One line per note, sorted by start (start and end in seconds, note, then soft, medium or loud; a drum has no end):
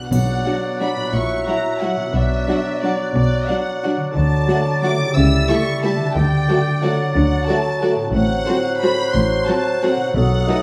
0.00 1.07 B2 soft
0.00 1.09 D4 soft
0.00 1.03 F#4 soft
0.00 1.16 D5 soft
0.00 0.12 F#6 soft
0.07 0.38 B1 soft
0.07 0.60 B2 soft
0.07 1.13 B4 soft
0.07 1.16 D5 soft
0.07 0.77 F#5 medium
0.07 2.11 F#6 soft
0.12 0.39 B2 medium
0.12 2.12 F#3 soft
0.12 triangle soft
0.45 0.58 F#3 soft
0.45 0.54 F#3 soft
0.45 0.58 D4 soft
0.45 0.54 D4 soft
0.45 0.54 F#4 soft
0.45 0.53 F#5 soft
0.80 0.88 F#3 soft
0.80 0.94 F#3 soft
0.80 0.89 D4 soft
0.80 0.94 D4 soft
0.80 0.88 F#4 soft
0.80 0.88 F#5 soft
0.80 1.15 B5 medium
0.96 2.07 A#2 soft
1.00 2.09 E4 soft
1.05 2.05 F#4 soft
1.10 1.40 A#1 medium
1.10 2.14 C#5 soft
1.10 1.47 C#6 medium
1.14 1.41 A#2 medium
1.14 2.15 E5 medium
1.46 1.59 F#3 soft
1.46 1.56 F#3 soft
1.46 1.59 E4 soft
1.46 1.56 E4 soft
1.46 1.56 F#4 soft
1.46 1.55 F#5 soft
1.46 1.81 A#5 medium
1.81 1.90 F#3 soft
1.81 1.95 F#3 soft
1.81 1.89 E4 soft
1.81 1.95 E4 soft
1.81 1.90 F#4 soft
1.81 2.15 F#5 medium
1.81 1.90 F#5 soft
1.96 4.07 B2 soft
2.01 4.00 D4 soft
2.06 4.04 F#4 soft
2.10 4.14 B4 soft
2.14 2.41 B1 medium
2.14 2.41 B2 medium
2.14 4.12 F#3 medium
2.14 4.12 D5 medium
2.14 2.83 E5 medium
2.14 4.11 F#6 soft
2.47 2.60 F#3 soft
2.47 2.57 F#3 soft
2.47 2.60 D4 soft
2.47 2.56 D4 soft
2.47 2.56 F#4 soft
2.47 2.57 F#5 soft
2.82 2.95 F#3 soft
2.82 2.91 F#3 soft
2.82 2.94 D4 soft
2.82 2.91 D4 soft
2.82 2.91 F#4 soft
2.82 3.15 D5 medium
2.82 2.92 F#5 soft
3.15 3.41 B1 medium
3.15 3.41 B2 medium
3.15 3.48 D5 medium
3.47 3.57 F#3 soft
3.47 3.62 F#3 soft
3.47 3.62 D4 soft
3.47 3.57 D4 soft
3.47 3.55 F#4 soft
3.47 3.55 F#5 soft
3.47 4.00 F#5 medium
3.83 3.95 F#3 soft
3.83 3.92 F#3 soft
3.83 3.95 D4 soft
3.83 3.92 D4 soft
3.83 3.91 F#4 soft
3.83 3.92 F#5 soft
3.97 5.08 D3 soft
4.01 5.10 D4 soft
4.06 5.12 F#4 soft
4.10 5.09 A4 soft
4.10 4.79 A5 medium
4.14 4.42 D2 medium
4.14 4.41 D3 medium
4.14 5.18 F#3 soft
4.14 5.14 D5 medium
4.14 6.15 A6 soft
4.48 4.56 F#3 soft
4.48 4.61 A3 soft
4.48 4.56 D4 soft
4.48 4.57 F#4 soft
4.48 4.61 F#4 soft
4.48 4.57 F#5 soft
4.82 4.91 F#3 soft
4.82 4.97 A3 soft
4.82 4.90 D4 soft
4.82 4.91 F#4 soft
4.82 4.96 F#4 soft
4.82 4.91 F#5 soft
4.82 5.15 D6 medium
4.97 6.08 C#3 medium
5.01 6.10 E4 soft
5.06 6.12 G4 soft
5.11 6.09 A4 soft
5.15 5.42 C#2 medium
5.15 5.41 C#3 medium
5.15 6.55 G3 medium
5.15 6.20 E5 medium
5.15 5.49 E6 medium
5.48 5.56 G3 medium
5.48 5.62 A3 soft
5.48 5.56 E4 medium
5.48 5.62 G4 soft
5.48 5.57 A4 soft
5.48 5.58 E5 soft
5.48 5.83 C#6 medium
5.83 5.92 G3 soft
5.83 5.95 A3 soft
5.83 5.91 E4 soft
5.83 5.96 G4 soft
5.83 5.91 A4 soft
5.83 5.91 E5 soft
5.83 6.15 A5 medium
5.97 8.06 D3 soft
6.01 8.08 D4 soft
6.05 8.03 F#4 soft
6.10 8.08 A4 soft
6.15 6.42 D2 medium
6.15 6.42 D3 medium
6.15 7.89 D5 medium
6.15 6.83 G5 medium
6.15 7.89 A6 medium
6.48 6.57 F#3 soft
6.48 6.61 A3 soft
6.48 6.61 F#4 soft
6.48 6.57 F#4 medium
6.48 6.57 A4 medium
6.48 6.57 D5 soft
6.82 6.91 F#3 soft
6.82 8.11 F#3 medium
6.82 6.94 A3 medium
6.82 6.94 F#4 soft
6.82 6.91 F#4 soft
6.82 6.91 A4 soft
6.82 6.91 D5 soft
6.82 7.13 F#5 medium
7.14 7.40 D2 medium
7.14 7.41 D3 medium
7.14 7.47 F#5 medium
7.47 7.57 F#3 medium
7.47 7.59 A3 soft
7.47 7.59 F#4 medium
7.47 7.57 F#4 medium
7.47 7.56 A4 medium
7.47 7.56 D5 soft
7.47 7.98 A5 medium
7.82 7.90 F#3 soft
7.82 7.94 A3 medium
7.82 7.90 F#4 medium
7.82 7.94 F#4 soft
7.82 7.90 A4 soft
7.82 7.90 D5 soft
7.95 10.06 A2 medium
8.00 10.09 C4 soft
8.04 10.04 F#4 soft
8.09 10.09 A4 soft
8.13 8.40 A1 medium
8.13 8.39 A2 medium
8.13 10.11 F#3 medium
8.13 10.16 C5 medium
8.13 8.77 F#5 medium
8.13 10.10 F#6 medium
8.46 8.57 F#3 soft
8.46 8.59 C4 medium
8.46 8.59 F#4 medium
8.46 8.56 F#4 medium
8.46 8.54 A4 medium
8.46 8.55 C5 soft
8.80 8.91 F#3 soft
8.80 8.93 C4 soft
8.80 8.92 F#4 soft
8.80 8.90 F#4 soft
8.80 8.90 A4 soft
8.80 8.90 C5 soft
8.80 9.14 B5 medium
9.14 9.40 A1 medium
9.14 9.40 A2 medium
9.14 9.47 C6 medium
9.46 9.56 F#3 medium
9.46 9.59 C4 soft
9.46 9.60 F#4 soft
9.46 9.56 F#4 medium
9.46 9.55 A4 soft
9.46 9.54 C5 soft
9.46 9.82 A5 medium
9.82 9.91 F#3 soft
9.82 9.94 C4 soft
9.82 9.94 F#4 soft
9.82 9.91 F#4 soft
9.82 9.91 A4 soft
9.82 9.91 C5 medium
9.82 10.15 F#5 medium
9.96 10.62 B2 soft
10.01 10.62 D#4 soft
10.05 10.62 F#4 soft
10.10 10.61 B2 medium
10.10 10.62 A4 soft
10.14 10.40 B1 medium
10.14 10.41 B2 medium
10.14 10.62 F#3 medium
10.14 10.62 A4 medium
10.14 10.62 F#5 medium
10.14 10.62 D#6 medium
10.47 10.56 F#3 medium
10.47 10.60 A3 soft
10.47 10.60 D#4 medium
10.47 10.57 D#4 soft
10.47 10.57 A4 soft
10.47 10.57 B4 soft